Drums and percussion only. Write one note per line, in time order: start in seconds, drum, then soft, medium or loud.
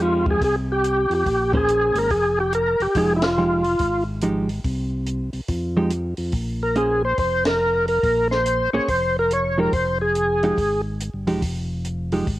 0.26 kick soft
0.41 kick soft
0.41 open hi-hat soft
0.84 closed hi-hat soft
1.11 open hi-hat soft
1.26 kick soft
1.26 open hi-hat soft
1.53 kick soft
1.68 closed hi-hat medium
1.95 open hi-hat soft
2.10 kick soft
2.10 open hi-hat soft
2.52 closed hi-hat medium
2.80 open hi-hat soft
2.95 kick soft
2.95 open hi-hat soft
3.22 snare medium
3.22 ride medium
3.64 open hi-hat soft
3.79 kick soft
3.79 open hi-hat soft
4.21 closed hi-hat soft
4.49 open hi-hat soft
4.64 kick soft
4.64 open hi-hat soft
5.06 closed hi-hat soft
5.33 open hi-hat soft
5.48 kick soft
5.48 open hi-hat soft
5.90 closed hi-hat medium
6.17 open hi-hat soft
6.32 kick soft
6.32 open hi-hat soft
6.75 closed hi-hat soft
7.18 kick soft
7.18 open hi-hat soft
7.45 snare medium
7.45 ride medium
7.88 open hi-hat soft
8.03 kick soft
8.03 open hi-hat soft
8.31 snare soft
8.46 closed hi-hat medium
8.88 kick soft
8.88 open hi-hat soft
9.30 closed hi-hat medium
9.73 kick soft
9.73 open hi-hat soft
10.15 closed hi-hat soft
10.43 open hi-hat soft
10.58 kick soft
10.58 open hi-hat soft
11.00 closed hi-hat medium
11.27 open hi-hat soft
11.42 kick soft
11.42 open hi-hat medium
11.85 closed hi-hat soft
12.12 open hi-hat soft
12.27 kick soft
12.27 open hi-hat soft